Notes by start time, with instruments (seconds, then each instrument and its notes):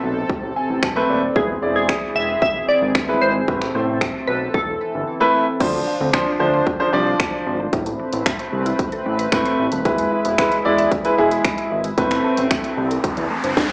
Already playing: analog synth pad C3 C4 A4, grand piano A3 C4 B4
0.03 analog synth bass B1
0.30 kick
0.43 analog synth bass A1
0.56 grand piano G#5
0.70 analog synth bass A1
0.83 analog synth bass B1, grand piano A5, finger snap, kick
0.96 grand piano A3 C4 B4
1.09 analog synth bass D#1, grand piano D5
1.35 analog synth bass E1, analog synth pad E3 G#4, grand piano G#3 E4 B4, synth pluck G#4, kick
1.62 analog synth bass E1, grand piano G#3 E4 D5
1.76 synth pluck G#4
1.89 finger snap, kick
2.15 analog synth bass E1, synth pluck E5
2.42 synth pluck E5, kick
2.55 analog synth bass E1
2.69 synth pluck D5
2.82 analog synth bass G#1
2.95 analog synth bass G1, finger snap, kick
3.08 grand piano G#3 E4 B4
3.21 analog synth bass G#1, synth pluck C5
3.48 analog synth bass A1, analog synth pad C3 A4, grand piano A3 C4 B4, kick
3.62 finger snap
3.75 analog synth bass A1, grand piano A3 C4 C5
4.01 finger snap, kick
4.27 analog synth bass B1, synth pluck B4
4.54 analog synth bass E1, analog synth pad E3, synth pluck A4, kick
4.68 analog synth bass E1
4.94 analog synth bass G1
5.20 grand piano A3 E4 B4
5.60 analog synth bass D2, grand piano F3 D4 C5, synth arpeggio sound F3, analog synth pad F3 D4 C5, kick, crash
5.74 synth arpeggio sound A3
5.87 synth arpeggio sound F3
6.00 analog synth bass D2, synth arpeggio sound C4
6.13 grand piano F3 D4 C5, synth arpeggio sound F3, finger snap, kick
6.27 synth arpeggio sound D4
6.40 analog synth bass D2, grand piano F3 D4 C5, synth arpeggio sound F3
6.54 synth arpeggio sound F4
6.67 synth arpeggio sound F3, kick
6.80 grand piano F3 D4 C5, synth arpeggio sound A4
6.93 analog synth bass C2, grand piano F3 D4 D5, synth arpeggio sound F3
7.07 synth arpeggio sound C5
7.20 synth arpeggio sound F3, finger snap, kick
7.33 synth arpeggio sound D5
7.46 analog synth bass G#1, synth arpeggio sound F3
7.60 synth arpeggio sound A3
7.73 analog synth bass A1, synth arpeggio sound E3, analog synth pad A3 C4 B4, kick, closed hi-hat
7.86 synth arpeggio sound A3, closed hi-hat
7.99 synth arpeggio sound E3
8.13 analog synth bass A1, synth arpeggio sound B3, closed hi-hat
8.26 synth arpeggio sound E3, finger snap, kick, closed hi-hat
8.39 synth arpeggio sound C4, closed hi-hat
8.53 analog synth bass C2, synth arpeggio sound E3
8.66 synth arpeggio sound E4, closed hi-hat
8.79 synth arpeggio sound E3, kick, closed hi-hat
8.92 synth arpeggio sound A4, closed hi-hat
9.06 analog synth bass A1, synth arpeggio sound E3
9.19 synth arpeggio sound B4, closed hi-hat
9.32 analog synth bass A2, synth arpeggio sound E3, grand piano A3 C4 B4, finger snap, kick, closed hi-hat
9.46 synth arpeggio sound C5, closed hi-hat
9.59 analog synth bass A1, synth arpeggio sound E3
9.72 analog synth bass D#1, synth arpeggio sound A3, closed hi-hat
9.85 analog synth bass E1, synth arpeggio sound E3, grand piano G#3 E4 B4, analog synth pad G#3 E4, kick, closed hi-hat
9.98 synth arpeggio sound G#3, closed hi-hat
10.12 synth arpeggio sound E3
10.25 analog synth bass E1, synth arpeggio sound B3, closed hi-hat
10.38 synth arpeggio sound E3, grand piano G#3 E4 B4, finger snap, kick, closed hi-hat
10.52 synth arpeggio sound E4, closed hi-hat
10.65 analog synth bass E1, synth arpeggio sound E3, grand piano G#3 E4 D5
10.78 synth arpeggio sound E5, closed hi-hat
10.91 synth arpeggio sound E3, kick, closed hi-hat
11.05 grand piano G#3 E4 B4, synth arpeggio sound G#5, closed hi-hat
11.18 analog synth bass E1, synth arpeggio sound E3, grand piano G#3 E4 G#4
11.31 synth arpeggio sound B5, closed hi-hat
11.45 synth arpeggio sound E3, finger snap, kick, closed hi-hat
11.58 synth arpeggio sound E6, closed hi-hat
11.71 analog synth bass G#1, synth arpeggio sound E3
11.84 synth arpeggio sound G#3, closed hi-hat
11.98 analog synth bass A1, synth arpeggio sound A3, analog synth pad A3 C4, grand piano A3 C4 B4, kick, closed hi-hat, riser
12.11 synth arpeggio sound B3, finger snap, closed hi-hat
12.24 synth arpeggio sound A3
12.37 analog synth bass A1, synth arpeggio sound C4, closed hi-hat
12.51 synth arpeggio sound A3, finger snap, kick, closed hi-hat
12.64 synth arpeggio sound E4, closed hi-hat
12.77 analog synth bass C2, synth arpeggio sound A3
12.91 synth arpeggio sound A4, closed hi-hat
13.04 analog synth bass A1, synth arpeggio sound A3, kick, closed hi-hat
13.17 analog synth bass E2, synth arpeggio sound B4, closed hi-hat
13.30 synth arpeggio sound A3
13.44 analog synth bass G1, synth arpeggio sound C5, closed hi-hat
13.57 kick, snare